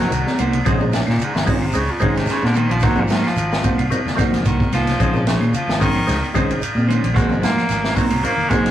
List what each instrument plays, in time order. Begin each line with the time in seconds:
Already playing: tonewheel organ F#3 A#3 C4 D#4, baritone saxophone F#3
0.11 fingered electric bass C2, clean electric guitar D#3, ride bell, shekere
0.26 snare, high conga, shekere
0.38 fingered electric bass C2, clean electric guitar A#3 D#4 F#4 C5, ride bell, low conga, claves, shekere
0.52 clean electric guitar C#3, ride bell, shekere
0.65 fingered electric bass A#1, clean electric guitar C#3 C#4 D#4 G#4 C5, tonewheel organ G#3 C4 C#4 D#4, kick, ride bell, claves, shekere
0.79 high conga, shekere
0.92 clean electric guitar C#4 D#4 G#4, snare, ride bell, shekere
1.07 fingered electric bass A#2, baritone saxophone A#2, clean electric guitar D#3, snare, claves, shekere
1.19 clean electric guitar C#3, ride bell, shekere
1.25 baritone saxophone G#2
1.33 fingered electric bass G#1, baritone saxophone F#2, snare, shekere
1.42 baritone saxophone G#2, high conga, low conga, shekere
1.46 clean electric guitar D#3 C#4 D#4 G#4 C5, tonewheel organ G#3 C4 C#4 D#4, kick, open hi-hat
1.52 baritone saxophone A#2
1.61 claves, shekere
1.66 baritone saxophone C3
1.73 fingered electric bass C#2, baritone saxophone C#3, tonewheel organ G#3 C4 C#4 D#4, ride bell, shekere
1.87 shekere
1.91 baritone saxophone F2
1.99 fingered electric bass G#1, baritone saxophone G#2, clean electric guitar C#3 C#4 D#4 G#4 C5, tonewheel organ G#3 C4 C#4 D#4, kick, ride bell, high conga, claves, shekere
2.14 snare, ride bell, shekere
2.19 baritone saxophone C3
2.26 clean electric guitar C#4 D#4 G#4 C5, ride bell, shekere
2.30 baritone saxophone C#3, snare
2.41 fingered electric bass A#2, baritone saxophone D3, snare, high conga, shekere
2.54 clean electric guitar D#3 D#4 G#4 C5, baritone saxophone D#3, muted clean electric guitar stroke, ride bell, low conga, claves, shekere
2.68 fingered electric bass A#1, clean electric guitar D#3 D#4 G#4 C5, baritone saxophone F3, ride bell, shekere
2.80 fingered electric bass G#1, tonewheel organ F#3 A#3 C4 D#4, clean electric guitar A#3 D#4 F#4 C5, kick, snare, ride bell, claves, shekere
2.84 baritone saxophone F#3
2.95 clean electric guitar F3, high conga, shekere
3.01 baritone saxophone A#2
3.08 fingered electric bass G#2, clean electric guitar F#3 A#3 D#4 F#4 C5, snare, ride bell, shekere
3.13 baritone saxophone D#3
3.23 clean electric guitar F3, snare, claves, shekere
3.28 baritone saxophone F3
3.36 fingered electric bass G#1, ride bell, shekere
3.52 snare, shekere
3.62 tonewheel organ F#3 A#3 C4 D#4, clean electric guitar A#3 D#4 F#4 C5, kick, ride bell, high conga, low conga, shekere
3.78 fingered electric bass C2, ride bell, claves, shekere
3.90 tonewheel organ F#3 A#3 C4 D#4, muted fingered electric bass stroke, ride bell, high conga, shekere
4.05 fingered electric bass F#1, clean electric guitar D#3, snare, shekere
4.15 tonewheel organ F#3 A#3 C4 D#4, clean electric guitar A#3 D#4 F#4, kick, snare, ride bell, high conga, claves, shekere
4.32 clean electric guitar F3, snare, ride bell, low conga, shekere
4.44 fingered electric bass C2, baritone saxophone D#3, clean electric guitar D#3 A#3 D#4 F#4 C5, kick, ride bell, shekere
4.60 kick, high conga, shekere
4.71 fingered electric bass C2, baritone saxophone F3, clean electric guitar A#3 D#4 C5, snare, ride bell, low conga, claves, shekere
4.87 clean electric guitar C#3, snare, ride bell, shekere
4.99 fingered electric bass A#1, clean electric guitar C#3 C#4 D#4 G#4 C5, tonewheel organ G#3 C4 C#4 D#4, kick, ride bell, claves, shekere
5.14 high conga, shekere
5.25 baritone saxophone C#3, clean electric guitar F3 C#4 D#4 G#4 C5, snare, ride bell, shekere
5.40 fingered electric bass A#2, clean electric guitar D#3, claves, shekere
5.54 clean electric guitar C#3, baritone saxophone F3, ride bell, shekere
5.68 fingered electric bass G#1, snare, shekere
5.79 clean electric guitar D#3 C#4 D#4 G#4 C5, baritone saxophone D#3, tonewheel organ G#3 C4 C#4 D#4, kick, open hi-hat, high conga, low conga, shekere
5.95 clean electric guitar F3, claves, shekere
6.07 fingered electric bass C#2, tonewheel organ G#3 C4 C#4 D#4, snare, ride bell, shekere
6.24 shekere
6.34 fingered electric bass G#1, clean electric guitar C#3 C#4 D#4 G#4 C5, tonewheel organ G#3 C4 C#4 D#4, kick, ride bell, high conga, claves, shekere
6.49 ride bell, low conga, shekere
6.62 ride bell, shekere
6.75 fingered electric bass A#2, high conga, shekere
6.87 clean electric guitar D#3 C#4 D#4 G#4 C5, ride bell, low conga, claves, shekere
7.02 fingered electric bass A#1, clean electric guitar D#3, ride bell, shekere
7.14 fingered electric bass G#1, tonewheel organ F#3 A#3 C4 D#4, baritone saxophone G#3, clean electric guitar A#3 D#4 F#4 C5, kick, ride bell, claves, shekere
7.29 clean electric guitar F3, high conga, shekere
7.42 fingered electric bass G#2, clean electric guitar F#3 A#3 D#4 F#4 C5, baritone saxophone A#3, snare, ride bell, shekere
7.55 clean electric guitar F3, snare, claves, shekere
7.69 fingered electric bass G#1, snare, ride bell, shekere
7.84 snare, shekere
7.95 baritone saxophone F#3, tonewheel organ F#3 A#3 C4 D#4, clean electric guitar A#3 D#4 C5, muted clean electric guitar stroke, kick, open hi-hat, high conga, low conga, shekere
8.10 fingered electric bass C2, ride bell, claves, shekere
8.23 tonewheel organ F#3 A#3 C4 D#4, baritone saxophone A#3, muted fingered electric bass stroke, ride bell, shekere
8.36 fingered electric bass F#1, clean electric guitar D#3, shekere
8.50 tonewheel organ F#3 A#3 C4 D#4, baritone saxophone G#3, clean electric guitar A#3 D#4 F#4 C5, kick, ride bell, high conga, claves, shekere
8.64 clean electric guitar F3, snare, ride bell, shekere